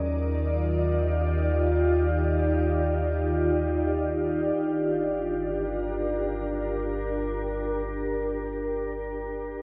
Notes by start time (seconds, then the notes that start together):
Already playing: D#2 D#3 D#4 A#4 D5
0.00 F4
0.77 G4
4.56 G1 D4
5.36 A#4